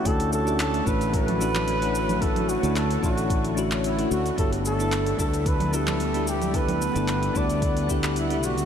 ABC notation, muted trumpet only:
X:1
M:4/4
L:1/8
Q:"Swing 16ths" 1/4=111
K:D
V:1 name="Muted trumpet"
A A A B B4 | A F A F2 z E F | A A2 A B A2 G | B3 d2 z E F |]